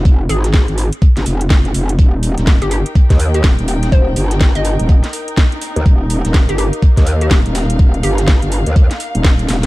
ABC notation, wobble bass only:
X:1
M:4/4
L:1/16
Q:"Swing 16ths" 1/4=124
K:Ebmix
V:1 name="Wobble bass" clef=bass
F,,,2 A,,,3 A,,,2 z2 G,,, F,,,2 F,,,2 F,,,2 | E,,,3 E,,,2 G,,,2 z2 E,,3 E,,, E,,,3 | E,,,2 G,,,3 G,,,2 E,,,2 z6 E,, | E,,,3 E,,,2 G,,,2 z2 E,,3 E,,, E,,,3 |
E,,,2 G,,,3 G,,,2 E,,2 z2 E,,,3 E,,,2 |]